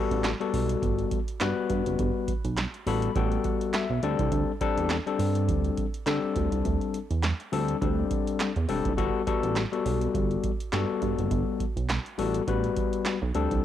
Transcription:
Already playing: tine electric piano G3 B3 F#4 A4
0.11 analog synth bass A1, closed hi-hat
0.24 snare, clap, closed hi-hat
0.40 tine electric piano G3 B3 F#4 A4, closed hi-hat
0.53 analog synth bass B1, open hi-hat
0.69 closed hi-hat
0.82 analog synth bass G1, kick, closed hi-hat
0.99 closed hi-hat
1.11 kick, closed hi-hat
1.28 closed hi-hat
1.41 analog synth bass G2, tine electric piano G3 B3 F#4 B4, snare, clap, closed hi-hat
1.70 analog synth bass G2, kick, closed hi-hat
1.86 analog synth bass F#1, closed hi-hat
1.99 analog synth bass G1, kick, closed hi-hat
2.28 kick, closed hi-hat
2.44 analog synth bass B1, closed hi-hat
2.57 snare, clap, closed hi-hat
2.74 closed hi-hat
2.86 analog synth bass A1, tine electric piano G3 B3 F#4 A4 B5, open hi-hat
3.02 closed hi-hat
3.15 analog synth bass A1, tine electric piano G3 B3 F#4 A4 G5, kick, closed hi-hat
3.32 closed hi-hat
3.44 tine electric piano F#5, kick, closed hi-hat
3.61 closed hi-hat
3.74 tine electric piano E5, snare, clap, closed hi-hat
3.90 analog synth bass B1
4.03 analog synth bass D2, tine electric piano G3 C4 D4 A4 D5, closed hi-hat
4.19 analog synth bass C2, kick, closed hi-hat
4.32 analog synth bass D2, kick, closed hi-hat
4.61 tine electric piano G3 C4 D4 A4, kick, closed hi-hat
4.77 analog synth bass E2, closed hi-hat
4.90 snare, clap, closed hi-hat
5.07 tine electric piano G3 C4 D4 A4, closed hi-hat
5.19 analog synth bass G2, open hi-hat
5.35 closed hi-hat
5.48 analog synth bass D2, kick, closed hi-hat
5.64 closed hi-hat
5.77 kick, closed hi-hat
5.94 closed hi-hat
6.06 analog synth bass D3, tine electric piano G3 C4 D4 A4, snare, clap, closed hi-hat
6.36 analog synth bass D2, kick, closed hi-hat
6.52 analog synth bass C2, closed hi-hat
6.65 analog synth bass D2, kick, closed hi-hat
6.81 closed hi-hat
6.94 closed hi-hat
7.11 analog synth bass E2, closed hi-hat
7.23 snare, clap, closed hi-hat
7.40 closed hi-hat
7.52 analog synth bass D2, tine electric piano G3 C4 D4 A4, open hi-hat
7.68 closed hi-hat
7.81 analog synth bass D2, tine electric piano G3 C4 D4 A4, kick, closed hi-hat
8.11 kick, closed hi-hat
8.27 closed hi-hat
8.40 snare, clap, closed hi-hat
8.56 analog synth bass E2, closed hi-hat
8.68 analog synth bass E1, tine electric piano G3 C4 D4 A4, open hi-hat
8.85 analog synth bass F#1, kick, closed hi-hat
8.97 analog synth bass G1, tine electric piano G3 B3 F#4 A4, kick, closed hi-hat
9.27 tine electric piano G3 B3 F#4 A4, kick, closed hi-hat
9.43 analog synth bass A1, closed hi-hat
9.56 snare, clap, closed hi-hat
9.72 tine electric piano G3 B3 F#4 A4, closed hi-hat
9.85 analog synth bass B1, open hi-hat
10.01 closed hi-hat
10.14 analog synth bass G1, kick, closed hi-hat
10.31 closed hi-hat
10.44 kick, closed hi-hat
10.60 closed hi-hat
10.72 analog synth bass G2, tine electric piano G3 B3 F#4 A4, snare, clap, closed hi-hat
11.02 analog synth bass G2, kick, closed hi-hat
11.19 analog synth bass F#1, closed hi-hat
11.31 analog synth bass G1, kick, closed hi-hat
11.60 kick, closed hi-hat
11.76 analog synth bass B1, closed hi-hat
11.89 snare, clap, closed hi-hat
12.06 closed hi-hat
12.18 analog synth bass A1, tine electric piano G3 B3 F#4 A4, open hi-hat
12.34 closed hi-hat
12.47 analog synth bass A1, tine electric piano G3 B3 F#4 B4, kick, closed hi-hat
12.64 closed hi-hat
12.77 kick, closed hi-hat
12.93 closed hi-hat
13.06 snare, clap, closed hi-hat
13.22 analog synth bass B1
13.35 analog synth bass D2, tine electric piano G3 C4 D4 A4, closed hi-hat
13.51 analog synth bass C2, kick, closed hi-hat

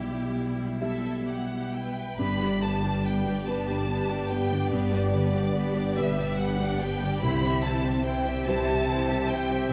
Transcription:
Already playing: felt piano B1 E5, cello section B2, harp B2 E5, viola section G3 E4, violin section G4
0.36 harp B3
0.81 felt piano G4 E5, violin section A4 E5, harp E5
1.27 harp G3, violin section G4 F#5
1.74 violin section B4 G5, harp E5
2.17 double bass section G1, harp G2, felt piano G2, cello section G2, french horn section B3 G4, viola section B3 G4, violin section D4 B4 B5
2.40 harp D3, viola section G3 D4, violin section G4 D5
2.61 harp G3, viola section B3 G4, violin section D4 B4 A5
2.82 viola section G3 D4, harp G4, violin section G4 D5
3.04 viola section B3 G4, violin section D4 B4 G5, harp B4
3.26 viola section G3 D4, harp G4, violin section G4 D5
3.46 double bass section G1, cello section G2, felt piano G3 G4 B4, viola section B3 G4, violin section A5, harp B5
3.50 violin section D4 B4
3.67 viola section G3 D4, harp G4, violin section G4
3.72 violin section D5
3.88 viola section B3 G4, violin section D4 B4, harp D5
4.09 viola section G3 D4, violin section G4 D5, harp B4
4.30 viola section B3 G4, violin section D4 B4 G5, harp G4
4.51 harp D3, viola section G3 D4, violin section G4 D5
4.71 double bass section G1, felt piano G2, harp G2, cello section G2, viola section B3 G4, violin section D4 B4 D5
4.92 viola section G3 D4, harp G3, violin section G4 D5
5.13 harp D3, viola section B3 G4, violin section D4 B4
5.33 viola section G3 D4, harp G4, violin section G4 D5
5.55 viola section B3 G4, violin section D4 B4, harp B4
5.75 viola section G3 D4, harp G4, violin section G4 D5
5.96 double bass section G1, cello section G2, felt piano G3 G4 B4, viola section B3 G4, violin section D4 B4 E5
6.18 viola section G3 D4, violin section G4 D5, harp G4
6.38 viola section B3 G4, violin section D4 B4 F#5
6.59 viola section G3 D4, violin section G4 D5, harp B4
6.80 viola section B3 G4, violin section D4 B4 G5, harp G4
7.00 harp D3, viola section G3 D4, violin section G4 D5
7.22 felt piano C2, double bass section C2, harp C3, cello section C3, viola section E3 E4, french horn section C4 G4, violin section E4 C5 B5
7.43 viola section G3 C4, harp C4, violin section G4 E5
7.63 viola section E3 E4, harp G3, violin section E4 C5 A5
7.85 viola section G3 C4, harp G4, violin section G4 E5
8.05 viola section E3 E4, violin section E4 C5 G5, harp C5
8.25 viola section G3 C4, harp G4, violin section G4 E5
8.46 double bass section C2, cello section C3, viola section E3 E4, felt piano G3 G4 C5, violin section E4 C5 A5, harp E5
8.67 viola section G3 C4, violin section G4 E5, harp G4
8.87 viola section E3 E4, violin section E4 C5
9.08 viola section G3 C4, violin section G4 E5, harp C5
9.28 viola section E3 E4, violin section E4 C5 G5, harp G4
9.50 viola section G3 C4, harp C4, violin section G4 E5
9.69 double bass section C2, harp C3, violin section E5

